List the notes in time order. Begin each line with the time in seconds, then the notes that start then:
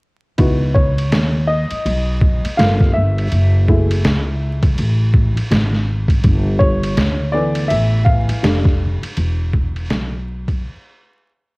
0.38 C#2 B3 D#4 E4 F#4, kick, ride
0.75 C#5, kick
0.98 ride
1.12 D#2, snare, hi-hat pedal, ride
1.47 D#5
1.70 muted upright bass stroke, ride
1.85 B1, ride
2.21 kick
2.44 muted upright bass stroke, ride
2.57 G1 A3 A#3 F4 F5, snare, hi-hat pedal, ride
2.80 kick, snare
2.93 G1 E5
3.18 ride
3.32 F#1, ride
3.68 G#3 A3 E4, kick
3.91 ride
4.05 C#2, snare, hi-hat pedal, ride
4.63 kick, ride
4.78 A1, ride
5.14 kick
5.36 muted upright bass stroke, ride
5.51 G#1, snare, hi-hat pedal, ride
5.73 snare
6.08 kick, ride
6.24 G1, kick, ride
6.59 C#5, kick
6.84 ride
6.97 D2, snare, hi-hat pedal, ride
7.32 E3 A3 B3 D5
7.55 ride
7.68 A1 E5, ride
8.05 F5, kick
8.29 muted upright bass stroke, ride
8.43 F1 G3 A3 D4, snare, hi-hat pedal, ride
8.65 kick, snare
9.03 muted upright bass stroke, ride
9.17 E1, ride
9.53 kick
9.76 ride
9.90 B1, snare, hi-hat pedal, ride
10.48 kick, ride